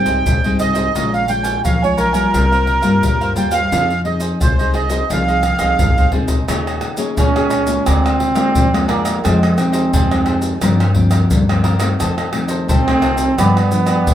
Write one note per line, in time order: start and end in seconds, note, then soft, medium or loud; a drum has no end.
0.00 0.23 G#2 soft
0.00 0.24 G3 medium
0.00 0.24 C4 medium
0.00 0.24 D#4 medium
0.00 0.57 G5 medium
0.05 0.22 C2 medium
0.05 0.41 G#4 soft
0.05 0.41 C5 medium
0.05 0.40 D#5 medium
0.05 pandeiro medium
0.05 maracas medium
0.26 0.56 C2 medium
0.26 0.92 G#2 medium
0.26 pandeiro medium
0.26 maracas medium
0.26 surdo medium
0.44 0.91 G3 soft
0.44 0.91 C4 medium
0.44 0.91 D#4 medium
0.44 0.58 G#4 medium
0.44 0.58 C5 medium
0.44 0.59 D#5 medium
0.44 pandeiro soft
0.44 maracas soft
0.59 0.90 C2 medium
0.59 0.76 F4 soft
0.59 0.74 G#4 soft
0.59 0.74 C5 soft
0.59 1.14 D#5 medium
0.59 0.73 D#5 soft
0.59 pandeiro medium
0.59 maracas medium
0.74 0.93 G#4 medium
0.74 0.92 C5 medium
0.74 0.92 D#5 medium
0.74 pandeiro medium
0.74 maracas medium
0.95 1.55 A#1 medium
0.95 1.61 A#2 medium
0.95 1.25 G#3 medium
0.95 1.25 C#4 medium
0.95 1.25 F4 medium
0.95 1.28 A#4 soft
0.95 1.28 C#5 medium
0.95 1.28 F5 medium
0.95 1.28 G#5 soft
0.95 pandeiro medium
0.95 maracas medium
0.95 surdo medium
1.13 1.31 F5 medium
1.13 pandeiro soft
1.13 maracas soft
1.28 1.62 G#3 medium
1.28 1.62 C#4 medium
1.28 1.62 F4 medium
1.28 1.62 G5 medium
1.28 muted cavaquinho stroke soft
1.28 pandeiro soft
1.28 maracas medium
1.43 1.62 C#5 medium
1.43 1.62 F5 medium
1.43 1.61 G#5 medium
1.43 pandeiro medium
1.43 maracas medium
1.64 2.24 B1 medium
1.64 2.30 F3 soft
1.64 1.80 A#4 medium
1.64 1.80 C#5 soft
1.64 1.83 F5 medium
1.64 1.81 F5 medium
1.64 1.81 G#5 soft
1.64 pandeiro medium
1.64 maracas medium
1.64 surdo medium
1.82 2.12 G#3 medium
1.82 2.12 C#4 medium
1.82 2.12 F4 medium
1.82 1.99 C#5 medium
1.82 1.96 C#5 medium
1.82 1.97 F5 medium
1.82 1.97 G#5 medium
1.82 pandeiro soft
1.82 maracas soft
1.97 2.14 A#4 medium
1.97 3.33 A#4 medium
1.97 2.13 C#5 medium
1.97 2.13 F5 medium
1.97 2.12 G#5 medium
1.97 pandeiro medium
1.97 maracas medium
2.13 2.79 G3 medium
2.13 2.79 A#3 medium
2.13 2.79 F4 medium
2.13 2.31 C#5 medium
2.13 2.31 F5 medium
2.13 2.30 G#5 medium
2.13 pandeiro medium
2.13 maracas medium
2.32 2.78 C2 loud
2.32 3.00 C3 medium
2.32 2.49 F4 soft
2.32 2.49 A#4 soft
2.32 2.49 C5 soft
2.32 2.50 F5 soft
2.32 pandeiro medium
2.32 maracas medium
2.32 surdo medium
2.51 2.66 A#4 soft
2.51 2.66 C5 medium
2.51 2.66 F5 medium
2.51 pandeiro soft
2.51 maracas soft
2.66 muted cavaquinho stroke soft
2.66 pandeiro medium
2.82 2.99 G2 medium
2.82 3.30 G3 medium
2.82 3.31 A#3 medium
2.82 3.31 F4 medium
2.82 3.18 A#4 medium
2.82 3.17 C5 medium
2.82 3.17 F5 medium
2.82 pandeiro medium
2.82 maracas medium
3.03 3.68 G2 medium
3.03 3.33 G2 medium
3.03 pandeiro medium
3.03 maracas medium
3.03 surdo medium
3.21 3.35 A#4 medium
3.21 3.35 C5 medium
3.21 3.36 F5 medium
3.21 pandeiro soft
3.21 maracas soft
3.35 3.66 D#2 medium
3.35 3.59 G3 medium
3.35 3.59 A#3 medium
3.35 3.52 F4 soft
3.35 3.59 F4 medium
3.35 3.52 A#4 soft
3.35 3.51 C5 medium
3.35 3.50 F5 medium
3.35 3.53 G5 medium
3.35 pandeiro medium
3.35 maracas medium
3.51 3.70 A#4 medium
3.51 3.69 C5 soft
3.51 3.69 F5 medium
3.51 4.01 F5 loud
3.51 pandeiro medium
3.51 maracas medium
3.72 4.31 F2 medium
3.72 4.38 F3 medium
3.72 3.92 C4 medium
3.72 3.93 D#4 medium
3.72 4.04 F4 soft
3.72 4.05 G#4 soft
3.72 3.93 G#4 medium
3.72 4.05 C5 soft
3.72 4.05 D#5 soft
3.72 pandeiro medium
3.72 maracas medium
3.72 surdo medium
3.90 pandeiro soft
3.90 maracas soft
4.05 4.38 C4 medium
4.05 4.38 D#4 medium
4.05 4.39 G#4 medium
4.05 4.21 D#5 medium
4.05 muted cavaquinho stroke soft
4.05 pandeiro medium
4.20 4.39 G#4 medium
4.20 4.38 C5 medium
4.20 4.38 D#5 medium
4.20 pandeiro medium
4.20 maracas medium
4.40 5.00 C2 medium
4.40 5.07 C3 soft
4.40 4.57 F4 soft
4.40 4.57 G#4 soft
4.40 4.57 C5 soft
4.40 4.74 C5 medium
4.40 4.57 D#5 soft
4.40 pandeiro medium
4.40 maracas medium
4.40 surdo loud
4.59 4.88 C4 medium
4.59 4.88 D#4 medium
4.59 4.73 G#4 medium
4.59 4.88 G#4 medium
4.59 4.74 C5 medium
4.59 4.74 D#5 medium
4.59 pandeiro soft
4.59 maracas soft
4.73 4.90 F4 medium
4.73 4.90 G#4 medium
4.73 4.89 C5 medium
4.73 4.88 D#5 medium
4.73 5.11 D#5 medium
4.73 pandeiro medium
4.89 5.03 C4 medium
4.89 5.03 D#4 medium
4.89 5.08 G#4 medium
4.89 5.04 G#4 medium
4.89 5.07 C5 medium
4.89 5.07 D#5 medium
4.89 pandeiro medium
4.89 maracas medium
5.10 5.54 C2 medium
5.10 5.76 F3 soft
5.10 5.43 C4 medium
5.10 5.43 D#4 medium
5.10 5.26 F4 soft
5.10 5.26 G#4 soft
5.10 5.43 G#4 medium
5.10 5.26 C5 medium
5.10 5.27 D#5 soft
5.10 6.11 F5 medium
5.10 pandeiro medium
5.10 maracas medium
5.10 surdo medium
5.28 5.42 G#4 soft
5.28 5.43 C5 soft
5.28 5.43 D#5 medium
5.28 pandeiro soft
5.28 maracas soft
5.43 muted cavaquinho stroke soft
5.43 pandeiro medium
5.43 tamborim medium
5.43 maracas medium
5.58 5.75 C2 medium
5.58 6.07 C4 medium
5.58 6.07 D#4 medium
5.58 5.94 G#4 soft
5.58 6.07 G#4 medium
5.58 5.94 C5 medium
5.58 5.93 D#5 medium
5.58 pandeiro medium
5.58 tamborim medium
5.58 maracas medium
5.79 6.09 C2 medium
5.79 6.45 C3 medium
5.79 surdo medium
5.79 pandeiro medium
5.79 maracas medium
5.79 surdo loud
5.97 6.11 G#4 soft
5.97 6.12 C5 medium
5.97 6.12 D#5 medium
5.97 pandeiro soft
5.97 maracas soft
5.97 surdo medium
6.12 6.43 C2 medium
6.12 6.36 C4 medium
6.12 6.36 D#4 medium
6.12 6.29 F4 soft
6.12 6.28 G#4 soft
6.12 6.36 G#4 medium
6.12 6.27 C5 soft
6.12 6.26 D#5 medium
6.12 pandeiro medium
6.12 surdo medium
6.28 6.46 G#4 soft
6.28 6.46 C5 medium
6.28 6.45 D#5 medium
6.28 pandeiro medium
6.28 maracas medium
6.28 surdo medium
6.48 6.78 D#2 medium
6.48 7.14 D#3 medium
6.48 6.95 A#3 medium
6.48 6.95 C#4 medium
6.48 6.64 D#4 medium
6.48 6.64 G#4 medium
6.48 6.95 G#4 medium
6.48 6.65 C#5 medium
6.48 6.65 D#5 medium
6.48 pandeiro medium
6.48 tamborim medium
6.48 maracas medium
6.48 surdo medium
6.67 6.80 G#4 soft
6.67 6.81 C#5 soft
6.67 6.81 D#5 medium
6.67 pandeiro soft
6.67 tamborim medium
6.67 maracas soft
6.81 muted cavaquinho stroke soft
6.81 pandeiro medium
6.81 tamborim medium
6.97 7.28 A#3 medium
6.97 7.28 C#4 medium
6.97 7.28 G#4 medium
6.97 7.15 G#4 soft
6.97 7.15 C#5 soft
6.97 7.15 D#5 medium
6.97 pandeiro medium
6.97 maracas medium
7.17 7.76 C#2 medium
7.17 7.83 A#2 soft
7.17 7.89 C#4 loud
7.17 7.33 D#4 medium
7.17 7.33 G#4 medium
7.17 7.34 C#5 medium
7.17 7.34 D#5 medium
7.17 pandeiro medium
7.17 maracas medium
7.17 surdo medium
7.36 7.64 A#3 medium
7.36 7.65 C#4 medium
7.36 7.65 G#4 medium
7.36 7.49 G#4 soft
7.36 7.50 C#5 soft
7.36 7.50 D#5 soft
7.36 pandeiro soft
7.36 tamborim medium
7.36 maracas soft
7.50 7.84 D#4 medium
7.50 7.84 G#4 medium
7.50 7.85 C#5 soft
7.50 7.85 D#5 medium
7.50 pandeiro medium
7.50 tamborim medium
7.50 maracas medium
7.67 8.31 G#3 medium
7.67 8.32 A#3 medium
7.67 8.32 F4 medium
7.67 pandeiro medium
7.67 maracas medium
7.86 8.56 D2 medium
7.86 8.52 D3 medium
7.86 8.89 C4 loud
7.86 8.02 G#4 medium
7.86 8.02 A#4 medium
7.86 8.03 D5 medium
7.86 8.02 F5 medium
7.86 pandeiro medium
7.86 tamborim medium
7.86 maracas medium
7.86 surdo medium
8.04 8.18 A#4 soft
8.04 8.19 D5 soft
8.04 8.19 F5 soft
8.04 pandeiro soft
8.04 tamborim medium
8.04 maracas soft
8.19 muted cavaquinho stroke soft
8.19 pandeiro medium
8.35 8.66 G#3 medium
8.35 8.66 A#3 medium
8.35 8.66 F4 medium
8.35 8.70 A#4 medium
8.35 8.69 D5 medium
8.35 8.70 F5 medium
8.35 pandeiro medium
8.35 tamborim medium
8.35 maracas medium
8.55 9.14 F2 medium
8.55 9.21 D3 medium
8.55 pandeiro medium
8.55 maracas medium
8.55 surdo loud
8.74 9.19 G#3 medium
8.74 9.20 A#3 medium
8.74 9.20 F4 medium
8.74 8.88 A#4 soft
8.74 8.89 D5 medium
8.74 8.88 F5 soft
8.74 pandeiro soft
8.74 tamborim medium
8.74 maracas soft
8.88 9.27 A#3 medium
8.88 9.05 G#4 medium
8.88 9.04 A#4 medium
8.88 9.03 D5 medium
8.88 9.04 F5 medium
8.88 pandeiro medium
8.88 tamborim medium
9.04 9.22 A#4 soft
9.04 9.21 D5 soft
9.04 9.22 F5 soft
9.04 pandeiro medium
9.04 tamborim medium
9.04 maracas medium
9.24 9.90 F2 medium
9.24 9.54 F2 medium
9.24 9.45 D#3 medium
9.24 9.45 G#3 medium
9.24 9.60 G#3 medium
9.24 9.45 C4 medium
9.24 9.40 F4 medium
9.24 9.40 G#4 medium
9.24 9.40 C5 medium
9.24 9.41 D#5 medium
9.24 pandeiro medium
9.24 tamborim medium
9.24 maracas medium
9.24 surdo medium
9.43 9.56 G#4 soft
9.43 9.57 C5 soft
9.43 9.56 D#5 soft
9.43 pandeiro soft
9.43 tamborim medium
9.43 maracas soft
9.57 10.04 D#3 medium
9.57 10.05 G#3 medium
9.57 10.05 C4 medium
9.57 10.97 C4 medium
9.57 muted cavaquinho stroke soft
9.57 pandeiro medium
9.57 tamborim medium
9.57 maracas medium
9.72 9.91 G#4 soft
9.72 9.91 C5 medium
9.72 9.90 D#5 medium
9.72 pandeiro medium
9.72 maracas medium
9.93 10.52 F2 medium
9.93 10.59 C3 soft
9.93 10.09 F4 medium
9.93 10.09 G#4 medium
9.93 10.10 C5 medium
9.93 10.10 D#5 medium
9.93 pandeiro medium
9.93 maracas medium
9.93 surdo loud
10.11 10.57 D#3 medium
10.11 10.57 G#3 medium
10.11 10.58 C4 medium
10.11 10.25 G#4 soft
10.11 10.26 C5 soft
10.11 10.26 D#5 soft
10.11 pandeiro soft
10.11 tamborim medium
10.11 maracas soft
10.26 10.60 F4 medium
10.26 10.60 G#4 soft
10.26 10.60 C5 medium
10.26 10.61 D#5 medium
10.26 pandeiro medium
10.26 tamborim medium
10.42 pandeiro medium
10.42 maracas medium
10.61 11.28 G2 medium
10.61 11.21 G2 medium
10.61 10.83 F3 medium
10.61 10.83 A#3 soft
10.61 10.83 C4 medium
10.61 10.78 F4 medium
10.61 10.79 A#4 medium
10.61 10.79 C5 medium
10.61 10.79 F5 medium
10.61 pandeiro medium
10.61 tamborim medium
10.61 maracas medium
10.61 surdo medium
10.80 10.94 A#4 soft
10.80 10.94 C5 soft
10.80 10.94 F5 soft
10.80 pandeiro soft
10.80 tamborim medium
10.80 maracas soft
10.94 11.42 F3 medium
10.94 11.42 A#3 medium
10.94 11.42 C4 medium
10.94 muted cavaquinho stroke soft
10.94 pandeiro medium
10.94 surdo medium
11.11 11.46 A#4 soft
11.11 11.46 C5 medium
11.11 11.46 F5 medium
11.11 pandeiro medium
11.11 tamborim medium
11.11 maracas medium
11.31 11.97 G2 medium
11.31 11.90 G2 medium
11.31 pandeiro medium
11.31 maracas medium
11.31 surdo medium
11.49 11.78 F3 medium
11.49 11.79 A#3 medium
11.49 11.79 C4 medium
11.49 11.63 A#4 soft
11.49 11.63 C5 soft
11.49 11.64 F5 soft
11.49 pandeiro soft
11.49 tamborim medium
11.49 maracas soft
11.64 11.81 F4 medium
11.64 11.80 A#4 medium
11.64 11.79 C5 medium
11.64 11.78 F5 medium
11.64 pandeiro medium
11.64 tamborim medium
11.80 12.28 D#3 medium
11.80 12.28 A3 medium
11.80 12.28 C4 medium
11.80 11.98 A#4 soft
11.80 11.97 C5 soft
11.80 11.97 F5 soft
11.80 pandeiro medium
11.80 tamborim medium
11.80 maracas medium
11.99 12.66 F2 medium
11.99 12.30 F2 medium
11.99 12.16 F4 medium
11.99 12.16 A4 medium
11.99 12.16 C5 medium
11.99 12.17 D#5 medium
11.99 pandeiro medium
11.99 tamborim medium
11.99 maracas medium
11.99 surdo medium
12.18 12.32 A4 soft
12.18 12.32 C5 soft
12.18 12.33 D#5 medium
12.18 pandeiro soft
12.18 tamborim medium
12.18 maracas soft
12.33 12.81 D#3 medium
12.33 12.81 A3 medium
12.33 12.81 C4 medium
12.33 muted cavaquinho stroke soft
12.33 pandeiro medium
12.33 tamborim medium
12.48 12.67 A4 soft
12.48 12.66 C5 medium
12.48 12.66 D#5 medium
12.48 pandeiro medium
12.48 maracas medium
12.68 13.28 C2 medium
12.68 13.35 C3 medium
12.68 13.41 C4 loud
12.68 12.85 F4 medium
12.68 12.85 A4 medium
12.68 12.85 C5 medium
12.68 12.85 D#5 medium
12.68 pandeiro medium
12.68 maracas medium
12.68 surdo loud
12.87 13.34 D#3 medium
12.87 13.34 A3 medium
12.87 13.34 C4 medium
12.87 13.01 A4 soft
12.87 13.01 C5 soft
12.87 13.01 D#5 soft
12.87 pandeiro soft
12.87 tamborim medium
12.87 maracas soft
13.01 13.36 F4 medium
13.01 13.36 A4 medium
13.01 13.36 C5 medium
13.01 13.37 D#5 medium
13.01 pandeiro medium
13.01 tamborim medium
13.18 pandeiro medium
13.18 maracas medium
13.38 14.07 G2 medium
13.38 14.04 G2 medium
13.38 13.59 F3 medium
13.38 13.59 B3 medium
13.38 14.14 B3 loud
13.38 13.59 D4 medium
13.38 13.54 F4 medium
13.38 13.54 G4 medium
13.38 13.55 B4 medium
13.38 13.55 D5 medium
13.38 pandeiro medium
13.38 tamborim medium
13.38 maracas medium
13.38 surdo medium
13.57 13.71 G4 soft
13.57 13.71 B4 soft
13.57 13.71 D5 soft
13.57 pandeiro soft
13.57 tamborim medium
13.57 maracas soft
13.71 14.05 F3 medium
13.71 14.05 B3 medium
13.71 14.05 D4 medium
13.71 muted cavaquinho stroke soft
13.71 pandeiro medium
13.71 maracas medium
13.86 14.14 G4 medium
13.86 14.14 B4 medium
13.86 14.14 D5 medium
13.86 pandeiro medium
13.86 tamborim medium
13.86 maracas medium
14.07 14.14 D2 medium
14.07 14.14 D3 medium
14.07 pandeiro medium
14.07 maracas medium
14.07 surdo loud